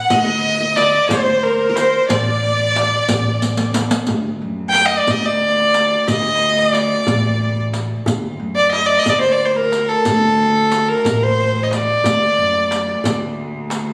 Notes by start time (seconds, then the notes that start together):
Already playing: F#5
0.03 F#5
0.10 D2 D#5, riq, darbuka dum
0.18 F#5
0.25 D#5
0.60 D#5
0.76 D5, riq, darbuka tek
1.08 D2 C5, riq, darbuka dum
1.43 A#4
1.69 A#4
1.76 C5, riq, darbuka tek
2.08 A1 D5, riq, darbuka dum
2.76 riq, darbuka tek
3.09 A1, riq, darbuka dum
3.42 riq
3.57 riq
3.74 riq, darbuka tek
3.91 riq
4.07 D2, riq, darbuka dum
4.42 F#2
4.69 G5
4.74 riq, darbuka tek
4.86 D#5
4.99 D5
5.07 D2 D#5, riq, darbuka dum
5.26 D5
5.74 riq, darbuka tek
6.08 D2 D#5, riq, darbuka dum
6.59 D#5
6.71 D5, riq, darbuka tek
7.07 A1, riq, darbuka dum
7.73 riq, darbuka tek
8.06 D2, riq, darbuka dum
8.40 F#2
8.56 D5
8.71 D#5, darbuka tek
8.86 D5
8.99 D#5
9.06 D2 D5, riq, darbuka dum
9.21 C5
9.32 D5
9.45 C5
9.56 A#4
9.72 riq, darbuka tek
9.89 A4
10.05 D2, riq, darbuka dum
10.72 riq, darbuka tek
10.89 A#4
11.05 A1, riq, darbuka dum
11.23 C5
11.63 D#5
11.71 D5, riq, darbuka tek
12.04 D2, riq, darbuka dum
12.38 F#2
12.71 riq, darbuka tek
13.04 D2, riq, darbuka dum
13.70 riq, darbuka tek